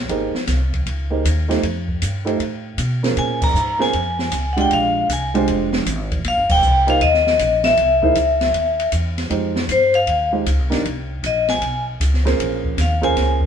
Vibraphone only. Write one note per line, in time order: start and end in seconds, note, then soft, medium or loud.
3.19 3.43 G#5 medium
3.44 3.82 A#5 loud
3.82 4.53 G#5 medium
4.53 4.58 F#5 medium
4.61 4.66 G5 medium
4.73 5.07 F5 medium
5.13 5.46 G#5 medium
6.28 6.49 F5 loud
6.51 6.86 G5 loud
6.90 7.02 F5 medium
7.02 7.61 D#5 medium
7.65 8.89 E5 medium
9.72 9.95 C5 medium
9.95 10.31 F5 loud
11.26 11.49 D#5 medium
11.50 11.85 G#5 loud
12.81 13.03 F5 medium
13.04 13.39 G#5 loud